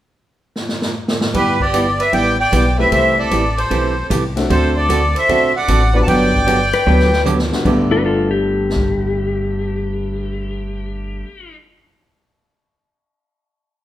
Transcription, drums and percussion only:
0.56 snare medium
0.69 snare medium
0.82 snare medium
1.08 snare medium
1.21 snare loud
1.34 kick soft
1.34 ride medium
1.60 kick soft
1.74 kick soft
1.74 hi-hat pedal medium
1.74 ride medium
2.00 ride soft
2.13 kick soft
2.13 ride soft
2.52 kick soft
2.52 hi-hat pedal medium
2.52 ride medium
2.92 kick soft
2.92 ride medium
3.31 kick soft
3.31 hi-hat pedal soft
3.31 ride medium
3.58 ride soft
3.71 kick soft
3.71 ride soft
4.10 kick soft
4.10 hi-hat pedal medium
4.10 ride medium
4.37 snare soft
4.37 ride soft
4.50 kick soft
4.50 ride medium
4.89 kick soft
4.89 hi-hat pedal medium
4.89 ride medium
5.16 ride soft
5.29 kick soft
5.29 ride soft
5.68 kick soft
5.68 hi-hat pedal soft
5.68 ride medium
6.08 kick soft
6.08 ride medium
6.34 kick medium
6.47 kick soft
6.47 hi-hat pedal soft
6.47 ride medium
6.73 ride soft
6.87 mid tom soft
7.00 snare soft
7.13 snare medium
7.26 hi-hat pedal medium
7.26 high tom medium
7.39 snare medium
7.53 snare medium
7.65 kick medium
7.65 crash soft
8.70 snare medium
8.76 kick medium

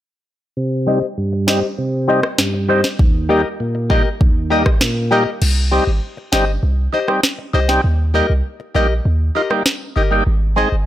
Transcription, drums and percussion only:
1.48 snare loud
2.23 cross-stick medium
2.38 snare loud
2.84 snare medium
2.99 kick loud
3.90 kick medium
4.21 kick medium
4.66 kick medium
4.66 cross-stick loud
4.81 snare loud
5.42 crash medium
6.33 snare loud
7.08 cross-stick medium
7.23 snare loud
7.69 snare medium
9.51 cross-stick medium
9.66 snare loud

